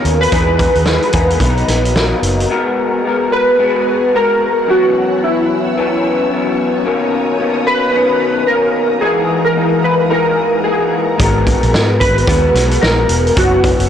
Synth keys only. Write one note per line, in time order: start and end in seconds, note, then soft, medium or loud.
0.00 0.23 A#4 medium
0.21 2.19 B4 medium
3.32 4.16 B4 loud
4.16 4.71 A#4 medium
4.70 5.16 F#4 medium
5.17 5.23 F#4 medium
5.24 6.55 E4 medium
7.67 8.51 B4 loud
8.47 9.04 A#4 medium
9.01 9.47 G#4 medium
9.45 9.85 A#4 medium
9.84 10.12 B4 medium
10.10 10.67 A#4 medium
10.64 11.05 G#4 medium
12.00 12.84 B4 loud
12.82 13.38 A#4 medium
13.37 13.87 F#4 medium